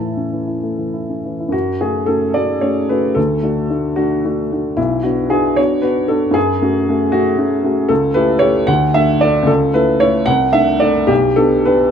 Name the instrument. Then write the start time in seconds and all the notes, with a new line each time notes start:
upright piano
Already playing: A2 E3 A4 E5 A5
0.00 E4
0.17 C#4
0.32 E3
0.47 E4
0.63 A3
0.78 E3
0.94 E4
1.10 C#4
1.25 E3
1.40 E4
1.49 F#2 F#4
1.81 A3 C#4 F#4 G#4
2.06 A3 C#4 F#4 A4
2.34 A3 C#4 F#4 D5
2.61 A3 C#4 F#4 C#5
2.89 A3 C#4 F#4 B4
3.15 D2 A4
3.43 A3 D4 F#4
3.70 A3 D4 F#4
3.96 A3 D4 F#4
4.25 A3 D4 F#4
4.52 A3 D4 F#4
4.77 B1 E4
5.03 B3 D4 F#4
5.30 B3 D4 F#4 G#4
5.56 B3 D4 F#4 C#5
5.82 B3 D4 F#4 B4
6.08 B3 D4 F#4 A4
6.31 F#2 G#4
6.62 A3 C#4 F#4
6.89 A3 C#4 F#4
7.12 A3 C#4 F#4
7.38 A3 C#4 F#4
7.64 A3 C#4 F#4
7.89 C#2 A4
8.14 A3 E4 G4 B4
8.39 A3 E4 G4 C#5
8.67 D2 F#5
8.94 A3 D4 A4 E5
9.21 A3 D4 A4 D5
9.42 C#2
9.47 A4
9.74 A3 E4 A4 B4
10.00 A3 E4 A4 C#5
10.26 C2 F#5
10.53 A3 D4 A4 E5
10.80 A3 D4 A4 D5
11.07 B1 G4
11.36 B3 D4 G4 A4
11.65 B3 D4 G4 B4